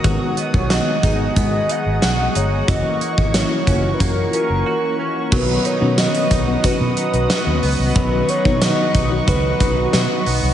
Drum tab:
CC |----------------|----------------|x---------------|----------------|
HH |x-x-x-x-x-x-x-x-|x-x-x-x-x-x-----|--x-xxx-x-xxx-o-|x-x-x-x-x-x-x-o-|
TB |----------------|----------------|----x-------x---|----x-------x---|
SD |----o-------o---|----o-----------|----o-------o---|----o-------o---|
BD |o--o--o-o-------|o--o--o-o-------|o-----o-o-------|o--o--o-o-o-----|